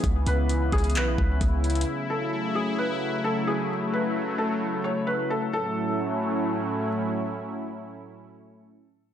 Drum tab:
HH |x---x---x---xxxxx-------x---xxxx|--------------------------------|--------------------------------|--------------------------------|
CP |----------------x---------------|--------------------------------|--------------------------------|--------------------------------|
BD |o-----------o-------o---o-------|--------------------------------|--------------------------------|--------------------------------|

HH |--------------------------------|
CP |--------------------------------|
BD |--------------------------------|